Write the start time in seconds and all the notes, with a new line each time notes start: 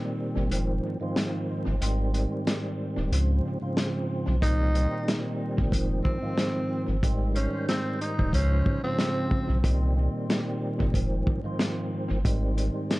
Already playing: A#2 D#3 G3 C4
0.37 G1
0.50 F1 G#2 D#3 F3 C4, closed hi-hat
1.00 G#2 D#3 F3 C4
1.16 snare, closed hi-hat
1.67 G1
1.80 G#1 G#2 D#3 G3 C4, closed hi-hat
2.11 G#2 D#3 G3 C4, closed hi-hat
2.47 snare, closed hi-hat
2.97 D#1
3.10 C#2 G#2 C#3 F3 C4, closed hi-hat
3.61 G#2 C#3 F3 C4
3.77 snare, closed hi-hat
4.28 B1
4.40 C2 A#2 D#3 G3 C4 D#4, kick, closed hi-hat
4.73 A#2 D#3 G3 C4, closed hi-hat
5.08 snare, closed hi-hat
5.58 G1, kick
5.71 F1 G#2 D#3 F3 C4, kick, closed hi-hat
6.04 C4, kick
6.21 G#2 D#3 F3 C4
6.38 snare, closed hi-hat
6.88 G1
7.02 G#1 G#2 D#3 G3 C4, kick, closed hi-hat
7.32 G#2 D#3 G3 C#4 C5, closed hi-hat
7.68 C4, snare, closed hi-hat
8.01 D#4, closed hi-hat
8.19 D#1, kick
8.32 C#2 G#2 C#3 F3 C#4 C5, kick, closed hi-hat
8.66 kick
8.82 G#2 C#3 F3 C4
8.99 snare, closed hi-hat
9.31 kick
9.49 B1
9.62 C2 A#2 D#3 G3 C4, kick, closed hi-hat
9.94 A#2 D#3 G3 C4
10.30 snare, closed hi-hat
10.80 G1, kick
10.93 F1 G#2 D#3 F3 C4, kick, closed hi-hat
11.27 kick
11.43 G#2 D#3 F3 C4
11.59 snare, closed hi-hat
12.10 G1
12.24 G#1 G#2 D#3 G3 C4, kick, closed hi-hat
12.54 G#2 D#3 G3 C4, closed hi-hat
12.91 snare, closed hi-hat